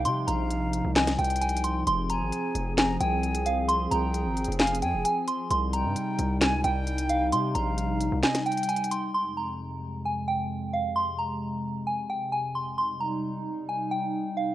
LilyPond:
<<
  \new Staff \with { instrumentName = "Synth bell" } { \time 4/4 \key f \minor \tempo 4 = 132 c'''8 bes''4. aes''8 g''8 aes''8 c'''8 | c'''8 bes''4. aes''8 g''4 f''8 | c'''8 bes''4. aes''8 g''8 aes''8 c'''8 | c'''8 bes''4. aes''8 g''4 f''8 |
c'''8 bes''4. aes''8 g''8 aes''8 c'''8 | c'''8 bes''4. aes''8 g''4 f''8 | c'''8 bes''4. aes''8 g''8 aes''8 c'''8 | c'''8 bes''4. aes''8 g''4 f''8 | }
  \new Staff \with { instrumentName = "Flute" } { \time 4/4 \key f \minor r8 f''4. ees''8 g''4. | r8 aes''4. bes''8 aes''4. | r8 g''4. f''8 aes''8 r4 | r8 g''4. aes''8 g''4. |
r8 f''4. ees''8 g''4. | r1 | r1 | r1 | }
  \new Staff \with { instrumentName = "Analog synth pad" } { \clef bass \time 4/4 \key f \minor <c f ees'>1 | <c' aes'>1~ | <c' aes'>1 | <c g ees'>1~ |
<c g ees'>1 | <f, c aes>1~ | <f, c aes>1 | <g ees'>1 | }
  \new Staff \with { instrumentName = "808-style bass" } { \clef bass \time 4/4 \key f \minor c8 bes,,4~ bes,,16 c,8. c,4. | f,,8. aes,,16 r8 f,,4 c,4.~ | c,8 c,8. aes,,8 f,,8. f,16 f,,16 r4 | c,8. g,16 r8 c,8. des,16 c,4. |
c8 bes,,4~ bes,,16 c,16 r2 | r1 | r1 | r1 | }
  \new DrumStaff \with { instrumentName = "Drums" } \drummode { \time 4/4 hh8 hh8 hh8 hh8 <hc hh sn>16 <hh sn>16 hh32 hh32 hh32 hh32 \tuplet 3/2 { hh16 hh16 hh16 hh16 r16 r16 } | hh8 hh8 hh8 hh8 <hc hh sn>8 hh8 hh16 hh16 hh8 | hh8 hh8 \tuplet 3/2 { hh16 r16 r16 hh16 hh16 hh16 <hc hh sn>16 hh16 hh16 hh16 r16 r16 } hh8 hh8 | hh8 hh8 hh8 hh8 <hc hh sn>8 hh8 hh16 hh16 hh8 |
hh8 hh8 hh8 hh8 <hc hh sn>16 <hh sn>16 hh32 hh32 hh32 hh32 \tuplet 3/2 { hh16 hh16 hh16 hh16 r16 r16 } | r4 r4 r4 r4 | r4 r4 r4 r4 | r4 r4 r4 r4 | }
>>